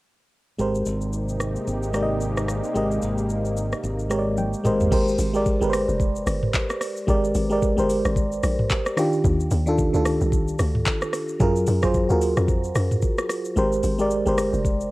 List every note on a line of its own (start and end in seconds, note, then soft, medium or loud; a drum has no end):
0.58 0.82 G#1 medium
0.58 4.88 C3 medium
0.58 1.46 G#3 medium
0.58 4.88 G#3 medium
0.58 4.61 A#3 medium
0.58 4.88 D#4 medium
0.58 1.47 G4 medium
0.58 4.88 G4 medium
0.58 1.47 A#4 medium
0.58 1.48 C5 medium
0.58 shaker medium
0.75 shaker medium
0.86 1.56 G#1 medium
0.86 shaker medium
1.01 shaker soft
1.13 shaker medium
1.29 shaker medium
1.40 cross-stick medium
1.40 shaker medium
1.56 shaker soft
1.67 2.60 G#1 loud
1.67 shaker medium
1.83 shaker soft
1.93 2.60 G#3 medium
1.93 2.61 G4 medium
1.93 2.61 A#4 medium
1.93 2.03 D5 medium
1.93 cross-stick medium
1.93 shaker medium
2.03 2.65 D#5 medium
2.21 shaker medium
2.37 cross-stick medium
2.37 shaker medium
2.48 cross-stick medium
2.48 shaker medium
2.64 shaker medium
2.74 2.99 G#1 medium
2.74 3.62 G#3 medium
2.74 3.63 G4 medium
2.74 3.63 A#4 medium
2.74 3.64 D#5 medium
2.74 shaker medium
2.91 shaker medium
3.02 3.72 G#1 medium
3.02 shaker medium
3.18 shaker medium
3.29 shaker medium
3.45 shaker medium
3.57 shaker medium
3.72 cross-stick medium
3.72 shaker soft
3.83 4.53 G#1 medium
3.83 shaker medium
3.99 shaker medium
4.10 4.63 G#3 medium
4.10 4.63 G4 medium
4.10 4.64 A#4 medium
4.10 4.19 C#5 medium
4.10 cross-stick medium
4.10 shaker medium
4.19 4.69 D5 medium
4.37 4.63 G5 medium
4.37 high tom medium
4.37 shaker medium
4.53 shaker medium
4.64 4.88 G#1 loud
4.64 4.87 G#3 medium
4.64 4.91 A#3 medium
4.64 4.87 G4 medium
4.64 4.88 A#4 medium
4.64 4.88 C5 medium
4.64 4.90 D#5 medium
4.64 mid tom medium
4.64 shaker medium
4.80 floor tom medium
4.80 shaker medium
4.91 5.16 G#1 loud
4.91 5.25 G#3 medium
4.91 5.25 G4 medium
4.91 5.26 A#4 medium
4.91 5.26 C5 medium
4.91 kick loud
4.91 crash loud
4.91 shaker medium
5.08 shaker medium
5.18 5.58 G#1 loud
5.18 open hi-hat medium
5.18 shaker medium
5.34 5.55 G#3 medium
5.34 5.55 G4 medium
5.34 5.56 A#4 medium
5.34 5.56 D5 medium
5.34 shaker medium
5.46 kick medium
5.46 shaker medium
5.60 5.86 G1 medium
5.60 6.47 G#3 medium
5.60 6.47 G4 medium
5.60 6.48 A#4 medium
5.60 5.68 B4 medium
5.60 shaker medium
5.70 6.51 C5 loud
5.70 cross-stick loud
5.70 open hi-hat medium
5.70 shaker medium
5.88 6.23 F1 medium
5.88 shaker soft
6.00 kick loud
6.00 shaker medium
6.16 shaker medium
6.27 6.51 G1 medium
6.27 cross-stick medium
6.27 open hi-hat medium
6.27 shaker medium
6.43 mid tom medium
6.54 kick loud
6.54 clap loud
6.54 shaker medium
6.70 cross-stick loud
6.70 shaker medium
6.81 cross-stick medium
6.81 open hi-hat medium
6.81 shaker loud
6.96 shaker medium
7.07 7.33 G#1 loud
7.07 7.41 G#3 medium
7.07 7.41 G4 medium
7.07 7.42 A#4 medium
7.07 7.42 D5 loud
7.07 kick loud
7.07 shaker medium
7.24 shaker medium
7.35 7.74 G#1 loud
7.35 open hi-hat medium
7.35 shaker medium
7.50 7.71 G#3 medium
7.50 7.71 G4 medium
7.50 7.72 A#4 medium
7.50 7.72 D5 medium
7.50 shaker medium
7.62 kick loud
7.62 shaker medium
7.77 8.02 G1 medium
7.77 8.63 G#3 medium
7.77 8.63 G4 medium
7.77 8.64 A#4 medium
7.77 8.64 C5 loud
7.77 shaker medium
7.89 open hi-hat medium
7.89 shaker medium
8.05 8.40 G#1 medium
8.05 cross-stick medium
8.05 shaker soft
8.16 kick loud
8.16 shaker medium
8.32 shaker medium
8.43 8.68 A#1 loud
8.43 cross-stick medium
8.43 open hi-hat medium
8.43 shaker medium
8.59 mid tom medium
8.70 kick loud
8.70 clap loud
8.70 shaker medium
8.86 cross-stick loud
8.86 shaker medium
8.96 9.51 D#3 medium
8.96 9.51 D4 medium
8.96 9.52 F4 medium
8.96 9.52 G4 loud
8.96 cross-stick loud
8.96 open hi-hat medium
8.96 shaker loud
9.13 shaker medium
9.24 9.49 D#2 loud
9.24 kick loud
9.24 shaker medium
9.40 shaker medium
9.51 9.90 D#2 loud
9.51 open hi-hat medium
9.51 shaker medium
9.66 9.87 D#3 medium
9.66 9.88 D4 medium
9.66 9.88 F4 medium
9.66 9.89 A4 loud
9.66 shaker medium
9.78 kick loud
9.78 shaker medium
9.93 10.19 D2 medium
9.93 10.79 D#3 medium
9.93 10.80 D4 medium
9.93 10.80 F4 medium
9.93 10.81 A4 medium
9.93 shaker medium
10.05 cross-stick loud
10.05 open hi-hat medium
10.05 shaker medium
10.21 10.56 C2 medium
10.21 shaker soft
10.32 kick loud
10.32 shaker medium
10.48 shaker medium
10.59 10.84 D2 medium
10.59 cross-stick medium
10.59 open hi-hat medium
10.59 shaker medium
10.75 mid tom medium
10.86 kick loud
10.86 clap loud
10.86 shaker medium
11.02 cross-stick loud
11.02 shaker medium
11.13 cross-stick medium
11.13 open hi-hat medium
11.13 shaker medium
11.28 shaker medium
11.40 11.65 F#2 loud
11.40 11.73 F#3 medium
11.40 11.74 F4 medium
11.40 11.74 G#4 medium
11.40 11.75 A#4 loud
11.40 kick loud
11.40 shaker medium
11.56 shaker medium
11.67 12.06 F#2 medium
11.67 open hi-hat medium
11.67 shaker medium
11.82 12.03 F#3 medium
11.82 12.04 F4 medium
11.82 12.04 G#4 medium
11.82 12.05 C5 medium
11.82 kick loud
11.82 cross-stick loud
11.82 shaker medium
11.94 kick loud
11.94 shaker medium
12.09 12.35 D#2 medium
12.09 12.96 F4 medium
12.09 12.95 F#4 medium
12.09 12.96 G#4 medium
12.09 12.97 A#4 medium
12.09 shaker medium
12.21 open hi-hat medium
12.21 shaker medium
12.37 12.72 F2 medium
12.37 cross-stick medium
12.37 shaker soft
12.48 kick loud
12.48 shaker medium
12.64 shaker medium
12.75 13.00 F#2 medium
12.75 cross-stick medium
12.75 open hi-hat medium
12.75 shaker medium
12.91 mid tom medium
12.91 shaker medium
13.02 kick loud
13.02 shaker medium
13.18 cross-stick loud
13.18 shaker medium
13.29 cross-stick medium
13.29 open hi-hat medium
13.29 shaker loud
13.45 shaker medium
13.56 13.81 G#1 loud
13.56 13.89 G#3 medium
13.56 13.90 G4 medium
13.56 13.90 A#4 medium
13.56 13.91 C5 loud
13.56 shaker medium
13.72 shaker medium
13.83 14.23 G#1 loud
13.83 open hi-hat medium
13.83 shaker medium
13.98 14.20 G#3 medium
13.98 14.20 G4 medium
13.98 14.21 A#4 medium
13.98 14.21 D5 medium
13.98 shaker medium
14.10 shaker medium
14.25 14.51 G1 medium
14.25 14.91 G#3 medium
14.25 14.91 G4 medium
14.25 14.91 A#4 medium
14.25 14.91 C5 loud
14.25 shaker medium
14.38 cross-stick loud
14.38 open hi-hat medium
14.38 shaker loud
14.53 14.88 F1 loud
14.53 shaker soft
14.65 kick loud
14.65 shaker medium
14.81 shaker medium